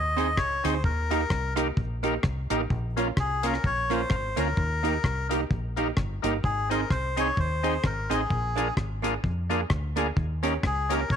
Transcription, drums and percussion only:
0.18 closed hi-hat medium
0.37 kick loud
0.37 cross-stick loud
0.65 closed hi-hat medium
0.84 kick loud
1.11 closed hi-hat medium
1.30 kick loud
1.30 cross-stick loud
1.57 cross-stick medium
1.57 closed hi-hat loud
1.77 kick loud
2.04 closed hi-hat medium
2.23 kick loud
2.23 cross-stick loud
2.50 closed hi-hat loud
2.70 kick loud
2.97 closed hi-hat medium
3.17 kick loud
3.17 cross-stick loud
3.43 closed hi-hat loud
3.54 cross-stick medium
3.64 kick loud
3.91 closed hi-hat medium
4.10 kick loud
4.10 cross-stick loud
4.37 closed hi-hat medium
4.57 kick loud
4.85 closed hi-hat medium
5.04 kick loud
5.04 cross-stick loud
5.31 closed hi-hat loud
5.51 kick loud
5.77 closed hi-hat medium
5.97 kick loud
5.97 cross-stick loud
6.24 closed hi-hat loud
6.44 kick medium
6.71 closed hi-hat medium
6.90 kick loud
6.90 cross-stick loud
7.17 closed hi-hat loud
7.37 kick loud
7.64 closed hi-hat medium
7.84 kick loud
7.84 cross-stick loud
8.11 closed hi-hat medium
8.30 kick loud
8.58 closed hi-hat medium
8.77 kick loud
8.77 cross-stick loud
9.04 closed hi-hat loud
9.24 kick loud
9.51 closed hi-hat medium
9.70 kick loud
9.70 cross-stick loud
9.97 closed hi-hat medium
10.17 kick loud
10.43 closed hi-hat medium
10.63 kick loud
10.63 cross-stick loud
10.90 closed hi-hat loud
11.10 kick loud

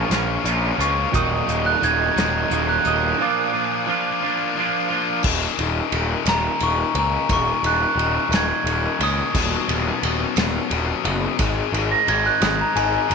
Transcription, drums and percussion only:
0.11 snare loud
0.11 closed hi-hat medium
0.45 closed hi-hat medium
0.80 closed hi-hat medium
1.14 kick loud
1.14 closed hi-hat medium
1.49 closed hi-hat medium
1.83 closed hi-hat medium
2.17 snare loud
2.17 closed hi-hat medium
2.51 closed hi-hat medium
2.85 closed hi-hat medium
5.23 kick loud
5.23 crash loud
5.23 tambourine medium
5.40 tambourine soft
5.59 ride medium
5.92 ride medium
6.26 snare loud
6.26 ride medium
6.26 tambourine medium
6.59 ride medium
6.59 tambourine soft
6.95 ride medium
7.29 kick loud
7.29 ride loud
7.29 tambourine medium
7.48 tambourine soft
7.64 ride medium
7.99 ride medium
8.32 snare loud
8.32 ride medium
8.32 tambourine medium
8.67 ride medium
8.67 tambourine soft
9.00 ride medium
9.35 kick loud
9.35 crash loud
9.35 tambourine medium
9.52 tambourine soft
9.69 ride medium
10.03 ride medium
10.36 snare loud
10.36 ride loud
10.36 tambourine medium
10.71 ride medium
11.05 ride medium
11.39 kick loud
11.39 ride loud
11.39 tambourine medium
11.74 ride medium
11.74 tambourine soft
12.08 ride medium
12.25 tambourine soft
12.42 snare loud
12.42 ride medium
12.42 tambourine medium
12.76 ride medium
13.11 ride medium
13.11 tambourine soft

